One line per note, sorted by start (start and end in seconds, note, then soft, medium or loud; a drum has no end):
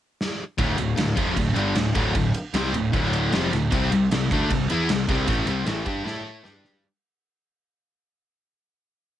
0.21 snare medium
0.58 0.77 D1 loud
0.58 0.75 D2 medium
0.58 0.76 A2 medium
0.58 0.77 D3 medium
0.58 kick loud
0.58 ride medium
0.77 0.96 D1 medium
0.77 0.93 D2 medium
0.77 0.93 A2 medium
0.77 ride medium
0.96 1.16 D1 medium
0.96 1.12 D2 medium
0.96 1.12 A2 medium
0.96 snare loud
0.96 ride loud
1.16 1.35 F1 medium
1.16 1.35 F2 medium
1.16 1.35 C3 loud
1.16 1.36 F3 medium
1.16 kick loud
1.16 ride medium
1.36 1.55 D1 medium
1.36 1.52 D2 medium
1.36 1.52 A2 medium
1.36 kick medium
1.36 ride loud
1.54 1.74 G1 medium
1.54 1.74 G2 medium
1.54 1.75 D3 loud
1.54 1.75 G3 medium
1.54 ride medium
1.75 1.94 D1 medium
1.75 1.91 D2 medium
1.75 1.91 A2 medium
1.75 snare loud
1.75 ride loud
1.95 2.14 D1 medium
1.95 2.13 D2 medium
1.95 2.14 A2 medium
1.95 2.14 D3 loud
1.95 kick loud
1.95 ride medium
2.14 2.33 D1 medium
2.14 2.30 D2 medium
2.14 2.31 A2 medium
2.14 kick medium
2.14 ride medium
2.34 ride medium
2.54 2.72 C2 medium
2.54 2.73 C3 loud
2.54 2.74 G3 loud
2.54 2.74 C4 loud
2.54 snare loud
2.54 ride medium
2.73 2.92 D1 medium
2.73 2.90 D2 medium
2.73 2.90 A2 medium
2.73 ride medium
2.92 3.30 D1 loud
2.92 3.31 D2 medium
2.92 3.32 A2 medium
2.92 3.32 D3 loud
2.92 kick medium
2.92 ride medium
3.13 ride medium
3.32 3.50 F1 loud
3.32 3.51 F2 loud
3.32 3.51 C3 loud
3.32 3.52 F3 loud
3.32 snare loud
3.32 ride medium
3.52 3.70 D1 medium
3.52 3.68 D2 medium
3.52 3.68 A2 medium
3.52 snare soft
3.52 ride medium
3.71 3.90 C2 loud
3.71 3.90 C3 medium
3.71 3.90 G3 medium
3.71 3.91 C4 loud
3.71 kick loud
3.71 ride loud
3.91 4.09 C2 medium
3.91 4.07 C3 medium
3.91 4.07 G3 medium
3.91 ride medium
4.11 4.29 C2 medium
4.11 4.27 C3 medium
4.11 4.27 G3 medium
4.11 snare loud
4.11 ride loud
4.31 4.49 D2 loud
4.31 4.50 D3 medium
4.31 4.50 A3 loud
4.31 4.51 D4 loud
4.31 kick loud
4.31 ride medium
4.50 4.68 C2 medium
4.50 4.66 C3 medium
4.50 4.66 G3 medium
4.50 kick medium
4.50 ride loud
4.69 4.87 E2 medium
4.69 4.88 E3 medium
4.69 4.89 B3 medium
4.69 4.89 E4 medium
4.69 ride medium
4.89 5.07 C2 medium
4.89 5.05 C3 medium
4.89 5.05 G3 medium
4.89 snare loud
4.89 ride loud
5.08 5.26 C2 medium
5.08 5.27 C3 loud
5.08 5.27 G3 medium
5.08 5.28 C4 medium
5.08 kick loud
5.08 snare soft
5.08 ride medium
5.28 5.46 A1 medium
5.28 5.46 A2 medium
5.28 5.47 E3 medium
5.28 5.47 A3 medium
5.28 kick loud
5.28 ride loud
5.46 5.65 C2 medium
5.46 5.65 C3 medium
5.46 5.65 G3 loud
5.46 5.66 C4 loud
5.46 ride medium
5.65 5.84 A1 medium
5.65 5.85 A2 medium
5.65 5.84 E3 loud
5.65 5.85 A3 loud
5.65 snare loud
5.65 ride medium
5.85 6.04 G2 loud
5.85 6.04 G3 medium
5.85 6.04 D4 medium
5.85 6.05 G4 medium
5.85 kick loud
5.85 ride medium
6.05 6.41 A2 medium
6.05 6.43 A3 medium
6.05 6.43 E4 medium
6.05 6.43 A4 medium
6.05 snare medium
6.43 6.80 G2 loud
6.43 6.81 G3 medium
6.43 6.82 D4 loud
6.43 6.82 G4 loud
6.43 snare medium
6.65 snare medium